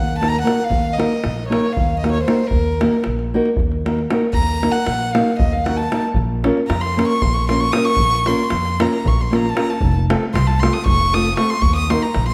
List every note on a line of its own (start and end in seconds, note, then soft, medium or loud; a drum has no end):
0.00 0.40 D#2 medium
0.00 0.17 F#5 medium
0.08 davul high soft
0.18 0.35 A#3 medium
0.18 0.36 D#4 medium
0.18 0.29 A5 medium
0.22 0.36 F#4 medium
0.22 0.36 A#4 medium
0.22 davul high medium
0.28 0.41 A#5 loud
0.35 davul high soft
0.41 0.59 A#3 medium
0.41 0.59 D#4 medium
0.41 0.59 F#4 soft
0.41 0.65 F#5 medium
0.46 0.60 A#4 medium
0.46 davul high medium
0.64 0.95 F5 medium
0.70 1.02 D#2 medium
0.70 davul low medium
0.93 1.48 D#5 medium
0.97 1.12 A#3 medium
0.97 1.13 D#4 medium
0.97 1.13 F#4 medium
0.97 1.13 A#4 medium
0.97 davul high medium
1.13 davul high soft
1.24 1.56 A#1 medium
1.24 davul high medium
1.39 davul high soft
1.48 1.65 A#3 medium
1.48 1.65 D#4 medium
1.48 1.65 F#4 medium
1.48 1.66 A#4 medium
1.48 1.74 C#5 medium
1.52 davul high medium
1.63 davul high soft
1.72 1.99 F5 medium
1.77 2.22 D#2 medium
1.77 davul low medium
1.91 davul high soft
1.99 2.17 A#3 medium
1.99 2.11 D#5 medium
2.04 2.18 D#4 medium
2.04 2.18 F#4 soft
2.04 2.18 A#4 medium
2.04 davul high medium
2.11 2.23 C#5 medium
2.17 davul high soft
2.23 2.48 C5 medium
2.28 2.41 A#3 medium
2.28 2.41 D#4 medium
2.28 2.42 F#4 soft
2.28 2.42 A#4 medium
2.28 davul high medium
2.47 3.03 A#4 medium
2.47 davul low medium
2.53 2.85 D#2 medium
2.81 2.95 A#3 medium
2.81 2.95 D#4 medium
2.81 2.95 F#4 medium
2.81 2.96 A#4 medium
2.81 davul high medium
2.93 davul high soft
3.04 3.38 A#1 medium
3.04 davul high medium
3.19 davul high soft
3.34 3.48 A#3 medium
3.34 3.48 D#4 medium
3.34 3.49 F#4 medium
3.34 3.49 A#4 medium
3.45 davul high soft
3.57 4.04 D#2 medium
3.57 davul low medium
3.72 davul high soft
3.85 3.99 A#3 medium
3.85 3.99 D#4 medium
3.85 4.00 F#4 medium
3.85 4.00 A#4 medium
3.85 davul high medium
3.99 davul high soft
4.11 4.24 A#3 medium
4.11 4.24 D#4 medium
4.11 4.24 F#4 medium
4.11 4.25 A#4 medium
4.11 davul high medium
4.33 4.67 D#2 medium
4.33 4.73 A#5 loud
4.33 davul low medium
4.49 davul high soft
4.62 4.76 A#3 medium
4.62 4.77 D#4 medium
4.62 4.77 F#4 medium
4.62 4.77 A#4 medium
4.62 davul high medium
4.71 5.15 F#5 medium
4.71 davul high soft
4.87 5.19 A#1 medium
4.87 davul high medium
5.00 davul high soft
5.14 5.29 A#3 medium
5.14 5.30 D#4 medium
5.14 5.30 F#4 medium
5.14 5.30 A#4 medium
5.14 5.38 F5 medium
5.14 davul high medium
5.39 5.86 D#2 medium
5.39 5.54 D#5 medium
5.39 davul low medium
5.52 5.66 F5 medium
5.52 davul high soft
5.64 5.80 A#3 medium
5.64 5.81 D#4 soft
5.64 5.81 F#4 medium
5.64 5.79 F#5 medium
5.64 davul high medium
5.69 5.82 A#4 medium
5.77 6.02 A5 medium
5.77 davul high soft
5.92 6.05 A#3 medium
5.92 6.06 D#4 soft
5.92 6.06 F#4 soft
5.92 6.06 A#4 medium
5.92 davul high medium
6.14 6.48 A#1 medium
6.14 davul low medium
6.44 6.58 A#3 medium
6.44 6.58 C#4 medium
6.44 6.59 F4 medium
6.44 6.59 A#4 medium
6.44 davul high medium
6.57 davul high soft
6.67 7.02 F2 medium
6.67 6.82 A#5 medium
6.67 davul high medium
6.81 7.07 C6 medium
6.81 davul high soft
6.97 7.12 A#3 medium
6.97 7.12 C#4 medium
6.97 7.12 F4 medium
6.97 7.12 A#4 medium
6.97 davul high medium
7.08 7.23 C#6 medium
7.08 davul high soft
7.22 7.69 A#1 medium
7.22 7.35 C6 medium
7.22 davul low medium
7.33 7.48 C#6 medium
7.33 davul high soft
7.49 7.63 A#3 medium
7.49 7.63 C#4 soft
7.49 7.64 F4 medium
7.49 7.64 A#4 medium
7.49 7.61 C6 medium
7.49 davul high medium
7.60 7.73 C#6 loud
7.60 davul high soft
7.72 7.88 A#3 soft
7.72 7.88 C#4 medium
7.72 7.88 F4 medium
7.72 7.86 D#6 medium
7.72 davul high medium
7.76 7.89 A#4 medium
7.84 8.28 C#6 loud
7.97 8.31 A#1 medium
7.97 davul low medium
8.26 8.41 A#3 medium
8.26 8.41 C#4 medium
8.26 8.41 F4 medium
8.26 8.41 A#4 medium
8.26 8.83 C6 medium
8.26 davul high medium
8.39 davul high soft
8.50 8.84 F2 medium
8.50 davul high medium
8.65 davul high soft
8.80 8.94 A#3 medium
8.80 8.94 C#4 medium
8.80 8.95 F4 medium
8.80 8.95 A#4 medium
8.80 9.09 A#5 medium
8.80 davul high medium
8.93 davul high soft
9.05 9.50 A#1 medium
9.05 9.23 C#6 medium
9.05 davul low medium
9.20 9.37 C6 medium
9.20 davul high soft
9.31 9.45 A#3 medium
9.31 9.46 C#4 soft
9.31 9.46 F4 medium
9.31 9.46 A#4 medium
9.31 davul high medium
9.35 9.50 A#5 medium
9.46 9.59 A5 medium
9.46 davul high soft
9.55 9.69 A#3 medium
9.55 9.69 C#4 medium
9.55 9.70 F4 medium
9.55 9.70 A#4 medium
9.55 davul high medium
9.59 9.71 A#5 medium
9.70 9.95 A5 medium
9.81 10.13 F1 medium
9.81 davul low medium
10.10 10.23 A3 medium
10.10 10.24 C4 medium
10.10 10.24 F4 medium
10.10 10.24 A4 medium
10.10 davul high medium
10.23 davul high soft
10.34 10.66 C2 medium
10.34 10.48 C6 medium
10.34 davul high medium
10.47 10.61 A5 medium
10.47 davul high soft
10.60 10.76 A3 medium
10.60 10.77 C4 medium
10.60 10.77 F4 medium
10.60 10.75 C6 medium
10.60 davul high medium
10.64 10.77 A4 medium
10.73 10.86 D#6 loud
10.73 davul high soft
10.86 11.33 F1 medium
10.86 11.15 C#6 loud
10.86 davul low medium
11.01 davul high soft
11.13 11.28 A3 medium
11.13 11.28 C4 medium
11.13 11.28 F4 medium
11.13 11.28 A4 medium
11.13 11.37 D#6 loud
11.13 davul high medium
11.26 davul high soft
11.37 11.52 A3 medium
11.37 11.52 C4 medium
11.37 11.53 F4 medium
11.37 11.53 A4 medium
11.37 11.51 C#6 medium
11.37 davul high medium
11.50 11.63 C6 loud
11.62 11.95 D#2 medium
11.62 11.75 C#6 loud
11.62 davul low medium
11.76 11.92 D#6 medium
11.76 davul high soft
11.90 12.05 A#3 medium
11.90 12.05 D#4 medium
11.90 12.05 F#4 medium
11.90 12.06 A#4 medium
11.90 12.04 C6 medium
11.90 davul high medium
12.02 12.28 A#5 medium
12.02 davul high soft
12.14 12.34 A#1 medium
12.14 davul high medium
12.29 12.34 C6 medium